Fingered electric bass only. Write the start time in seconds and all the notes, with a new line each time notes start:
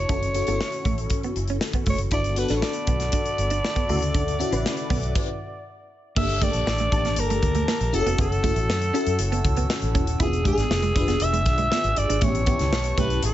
0.09 F#1
0.48 G1
0.85 A1
1.36 F#1
1.87 F#1
2.12 G1
2.50 A1
2.88 B1
3.38 G1
3.89 D2
4.52 A1
4.90 B1
6.16 G1
6.54 A#1
6.67 A1
6.92 A1
7.18 G1
7.43 D2
7.81 A#1
7.93 F#1
8.06 F1
8.18 F#1
8.56 A1
8.69 F#2
9.07 F#2
9.19 F#1
9.44 C#2
9.82 A1
9.95 E1
10.07 D#1
10.20 E1
10.57 G#1
10.70 F1
10.96 F1
11.21 E1
11.46 B1
11.84 G#1
11.97 G1
12.10 G#1
12.22 A1
12.60 C#2
12.72 B1
12.97 B1
13.23 A1